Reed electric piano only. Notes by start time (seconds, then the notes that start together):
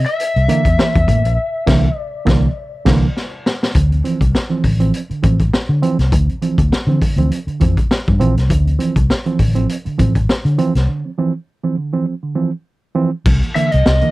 0.48 D3 E3 A#3
0.78 E3 A#3
0.95 C3
1.08 E3 A#3
1.66 D3 E3 A#3
2.25 D3 E3 A#3
2.86 D3 E3 A#3
3.75 D3
3.91 F3 C4
4.04 E3 F3 C4
4.50 E3 F3 C4
4.63 D3
4.80 E3 F3 C4
4.94 F3 C4
5.10 D3
5.23 E3 F3 C4
5.82 E3 F3 C4
6.12 D3
6.28 F3 C4
6.42 E3 F3 C4
6.88 E3 F3 C4
7.01 D3
7.18 E3 F3 C4
7.31 F3 C4
7.48 D3
7.60 E3 F3 C4
8.19 E3 F3 C4
8.49 D3
8.66 F3 C4
8.78 E3 F3 C4
9.26 E3 F3 C4
9.39 D3
9.55 E3 F3 C4
9.68 F3 C4
9.85 D3
9.98 E3 F3 C4
10.58 E3 F3 C4
10.88 D3
11.05 F3 C4
11.18 E3 F3 C4
11.63 E3 F3 C4
11.77 D3
11.93 E3 F3 C4
12.06 F3 C4
12.23 D3
12.35 E3 F3 C4
12.95 E3 F3 C4
13.26 C3
13.42 E3 A#3
13.56 D3 E3 A#3
13.85 C3
14.02 D3 E3 A#3